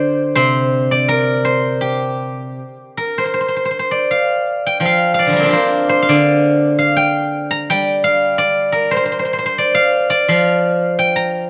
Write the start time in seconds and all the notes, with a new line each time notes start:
Already playing: D3 C5 D5 F5 G5
0.35 C3 C5
0.91 D5
1.08 A#4
1.45 C5
1.81 G4
2.97 A#4
3.18 C5
3.26 C5
3.34 C5
3.41 C5
3.48 C5
3.56 C5
3.65 C5
3.71 C5
3.79 C5
3.91 D5
4.11 F5
4.66 G5
4.80 F3 G5
4.85 F5
5.14 F5
5.19 D5
5.26 D3 F3
5.33 G3 A#3
5.39 C4
5.43 D4 F4
5.49 G4 A#4
5.53 C5
5.89 C5
6.02 F5
6.09 D3 D5
6.79 F5
6.97 G5
7.51 A#5
7.70 G3 G5
8.04 F5
8.38 D5
8.72 A#4
8.91 C5
8.97 C5
9.06 C5
9.12 C5
9.19 C5
9.25 C5
9.33 C5
9.39 C5
9.46 C5
9.58 D5
9.75 F5
10.10 D5
10.28 F3 F5
10.99 G5
11.16 A#5